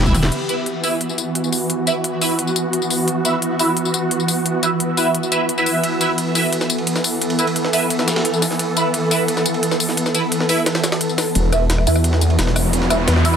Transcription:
Already playing: wobble bass E1, synth drone E3 B3 G4
0.06 synth stab E4 B4 E5, kick, high tom, tambourine
0.15 snare, open hi-hat, mid tom, ride, ride bell, tambourine
0.23 snare
0.32 synth drone E3 B3 F#4, closed hi-hat, crash
0.49 synth stab E4 B4 E5, closed hi-hat, tambourine
0.66 closed hi-hat
0.84 synth stab E4 B4 E5, open hi-hat, tambourine
1.01 closed hi-hat
1.09 tambourine
1.18 closed hi-hat, tambourine
1.35 closed hi-hat
1.44 tambourine
1.53 open hi-hat, tambourine
1.70 closed hi-hat
1.87 synth stab E4 B4 E5, closed hi-hat, tambourine
2.04 closed hi-hat
2.21 synth stab E4 B4 E5, open hi-hat, tambourine
2.39 closed hi-hat
2.47 tambourine
2.56 closed hi-hat, tambourine
2.73 closed hi-hat
2.82 tambourine
2.90 open hi-hat, tambourine
3.08 closed hi-hat
3.25 synth stab E4 B4 E5, closed hi-hat, tambourine
3.42 closed hi-hat
3.59 synth stab E4 B4 E5, open hi-hat, tambourine
3.77 closed hi-hat
3.85 tambourine
3.94 closed hi-hat, tambourine
4.11 closed hi-hat
4.20 tambourine
4.28 open hi-hat, tambourine
4.46 closed hi-hat
4.63 synth stab E4 B4 E5, closed hi-hat, tambourine
4.80 closed hi-hat
4.97 synth stab E4 B4 E5, open hi-hat, tambourine
5.15 closed hi-hat
5.23 tambourine
5.32 synth stab E4 B4 E5, closed hi-hat, tambourine
5.49 closed hi-hat
5.58 synth stab E4 B4 E5, tambourine
5.66 open hi-hat, tambourine
5.83 synth drone A4, closed hi-hat, ride
6.01 synth stab E4 B4 E5, closed hi-hat, ride, tambourine
6.18 closed hi-hat, ride
6.35 synth stab E4 B4 E5, open hi-hat, ride, tambourine
6.52 closed hi-hat, ride
6.61 snare, tambourine
6.70 closed hi-hat, ride, tambourine
6.78 ride
6.87 closed hi-hat, ride
6.96 snare, tambourine
7.04 open hi-hat, ride, tambourine
7.21 closed hi-hat, ride
7.30 ride
7.39 synth stab E4 B4 E5, closed hi-hat, tambourine
7.47 ride
7.56 closed hi-hat, ride
7.65 snare
7.73 synth stab E4 B4 E5, open hi-hat, tambourine
7.90 closed hi-hat, ride
7.99 snare, tambourine
8.08 snare, closed hi-hat, ride, tambourine
8.16 snare, ride
8.25 closed hi-hat, ride
8.34 tambourine
8.42 snare, open hi-hat, ride, tambourine
8.51 snare
8.59 closed hi-hat, ride
8.77 synth stab E4 B4 E5, closed hi-hat, ride, tambourine
8.94 closed hi-hat, ride
9.11 synth stab E4 B4 E5, open hi-hat, ride, tambourine
9.28 closed hi-hat, ride
9.37 snare, tambourine
9.46 closed hi-hat, ride, tambourine
9.54 ride
9.63 closed hi-hat, ride
9.71 snare, tambourine
9.80 open hi-hat, ride, tambourine
9.89 snare
9.97 closed hi-hat, ride
10.06 snare, tambourine
10.15 synth stab E4 B4 E5, closed hi-hat, ride, tambourine
10.32 closed hi-hat, ride
10.40 snare
10.49 synth stab E4 B4 E5, open hi-hat, tambourine
10.66 snare, closed hi-hat, ride
10.75 snare, ride, tambourine
10.84 snare, closed hi-hat, ride, tambourine
10.92 snare, ride
11.01 closed hi-hat, ride
11.09 tambourine
11.18 snare, open hi-hat, ride, tambourine
11.35 detuned saw bass E1, synth drone E3 B3 F#4, closed hi-hat, ride, riser
11.52 synth stab E4 B4 E5, cross-stick, closed hi-hat, ride, tambourine
11.70 snare, closed hi-hat, ride
11.78 cross-stick
11.87 detuned saw bass E2, synth stab E4 B4 E5, open hi-hat, ride, tambourine
11.96 cross-stick, tambourine
12.04 closed hi-hat, ride
12.13 snare
12.21 closed hi-hat, ride, tambourine
12.30 ride
12.39 detuned saw bass E1, snare, closed hi-hat, ride
12.47 snare
12.56 cross-stick, open hi-hat, ride, tambourine
12.73 closed hi-hat, ride
12.82 snare
12.90 detuned saw bass E1, synth stab E4 B4 E5, cross-stick, closed hi-hat, ride, tambourine
13.08 detuned saw bass E2, snare, closed hi-hat, ride
13.16 cross-stick, snare
13.25 synth stab E4 B4 E5, open hi-hat, tambourine
13.34 cross-stick, tambourine

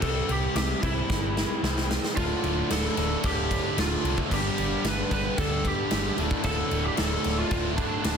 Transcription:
Already playing: overdriven electric guitar C3 G3 C4
0.00 fingered electric bass C2, distorted electric guitar C3 G3 C4, lead electric guitar A4, kick, crash
0.28 fingered electric bass C2, distorted electric guitar C3 G3 C4, lead electric guitar G4, crash
0.55 fingered electric bass C2, distorted electric guitar C3 G3 C4, lead electric guitar G4, snare, crash
0.81 fingered electric bass C2, distorted electric guitar C3 G3 C4, lead electric guitar E4, kick, crash
1.08 fingered electric bass G1, distorted electric guitar C3 G3 C4, kick, snare
1.35 distorted electric guitar C3 G3 C4, snare
1.62 fingered electric bass C2, distorted electric guitar C3 G3 C4, snare
1.78 snare
1.89 distorted electric guitar C3 G3 C4, snare
2.04 snare
2.16 fingered electric bass D1, distorted electric guitar D2 A2 D3, lead electric guitar F4, kick, crash
2.43 fingered electric bass D1, distorted electric guitar D2 A2 D3, crash
2.69 fingered electric bass D1, distorted electric guitar D2 A2 D3, lead electric guitar A4, snare, crash
2.96 fingered electric bass D1, distorted electric guitar D2 A2 D3, crash
3.22 fingered electric bass D1, distorted electric guitar D2 A2 D3, lead electric guitar G4, kick, crash
3.50 distorted electric guitar D2 A2 D3, kick, crash
3.76 fingered electric bass D1, distorted electric guitar D2 A2 D3, lead electric guitar F4, snare, crash
4.04 fingered electric bass C2, distorted electric guitar D2 A2 D3, crash
4.18 kick
4.31 fingered electric bass G1, distorted electric guitar G2 D3 G3, lead electric guitar G4, kick, crash
4.57 fingered electric bass G1, distorted electric guitar G2 D3 G3, crash
4.83 fingered electric bass G1, distorted electric guitar G2 D3 G3, snare, crash
4.89 lead electric guitar B4
5.09 fingered electric bass G1, distorted electric guitar G2 D3 G3, kick, crash
5.13 distorted electric guitar G2, lead electric guitar B4
5.36 fingered electric bass D2, distorted electric guitar G2 D3 G3, lead electric guitar A4, kick, crash
5.63 distorted electric guitar G2 D3 G3, lead electric guitar G4, kick, crash
5.89 fingered electric bass G1, distorted electric guitar G2 D3 G3, snare, crash
6.15 fingered electric bass D1, distorted electric guitar D2 A2 D3, crash
6.31 kick
6.43 fingered electric bass D1, distorted electric guitar D2 A2 D3, lead electric guitar A4, kick, crash
6.69 fingered electric bass D1, distorted electric guitar D2 A2 D3, crash
6.85 lead electric guitar G4
6.96 fingered electric bass D1, distorted electric guitar D2 A2 D3, lead electric guitar A4, snare, crash
7.22 fingered electric bass D1, distorted electric guitar D2 A2 D3, crash
7.38 lead electric guitar F4
7.49 fingered electric bass D1, distorted electric guitar D2 A2 D3, lead electric guitar F4, kick, crash
7.76 distorted electric guitar D2 A2 D3, lead electric guitar D4, kick, crash
8.03 fingered electric bass D1, distorted electric guitar D2 A2 D3, snare, crash

